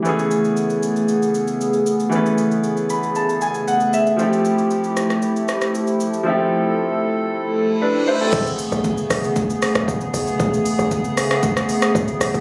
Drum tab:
CC |----------------|----------------|----------------|----------------|
HH |----------------|----------------|----------------|----------------|
SH |xxxxxxxxxxxxxxxx|xxxxxxxxxxxxxxxx|xxxxxxxxxxxxxxxx|----------------|
SD |----------------|----------------|------rr--rr----|----------------|
BD |----------------|----------------|----------------|----------------|

CC |x---------------|----------------|
HH |--o---o---o---o-|--o---o---o---o-|
SH |xxxxxxxxxxxxxxxx|xxxxxxxxxxxxxxxx|
SD |------r---rr----|------rr-r-r--r-|
BD |o---o---o---o---|o---o---o---o---|